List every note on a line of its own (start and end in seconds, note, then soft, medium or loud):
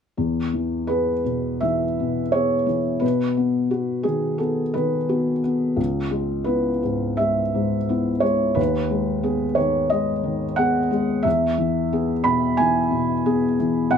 0.17 1.59 E2 soft
0.53 1.11 E3 soft
0.87 1.22 B3 soft
0.87 1.23 G#4 soft
0.87 1.62 B4 medium
1.25 1.84 B2 soft
1.60 2.19 E3 soft
1.60 2.32 E5 medium
2.00 2.55 B2 soft
2.32 2.65 B3 soft
2.32 2.65 G#4 soft
2.32 3.02 C#5 medium
2.67 3.02 E3 soft
3.00 4.37 B2 soft
3.00 4.05 B4 medium
3.37 3.69 B3 soft
3.71 4.03 B3 soft
3.71 4.03 F#4 soft
4.03 4.61 D#3 soft
4.03 4.40 G#4 medium
4.38 4.96 B3 soft
4.38 4.74 A4 soft
4.74 5.30 D#3 soft
4.74 5.77 B4 medium
5.09 5.40 B3 soft
5.09 5.40 F#4 soft
5.44 5.78 B3 soft
5.76 7.15 C#2 soft
6.10 6.68 G#3 soft
6.44 6.79 B3 soft
6.44 6.80 E4 soft
6.44 7.19 B4 medium
6.83 7.41 G#2 soft
7.17 7.76 G#3 soft
7.17 8.23 E5 medium
7.55 8.10 G#2 soft
7.89 8.20 B3 soft
7.89 8.21 E4 soft
8.20 8.57 G#3 soft
8.20 8.56 C#5 medium
8.55 9.87 D#2 soft
8.55 9.57 B4 medium
8.90 9.45 G#3 soft
9.23 9.54 B3 soft
9.23 9.55 G#4 soft
9.55 10.12 D#3 soft
9.55 9.91 C#5 medium
9.90 10.45 G#3 soft
9.90 10.58 D#5 medium
10.24 10.78 D#3 soft
10.56 10.88 B3 soft
10.56 10.89 G#4 soft
10.56 11.24 F#5 medium
10.91 11.25 G#3 soft
11.23 12.55 E2 medium
11.23 12.24 E5 medium
11.58 12.12 E3 soft
11.93 12.23 B3 soft
11.93 12.23 G#4 soft
12.24 12.79 B2 soft
12.24 12.58 B5 medium
12.57 13.13 E3 soft
12.57 13.92 G#5 medium
12.91 13.45 B2 soft
13.26 13.56 B3 soft
13.26 13.56 G#4 soft
13.59 13.93 E3 soft
13.91 13.98 B2 medium
13.91 13.98 F#5 medium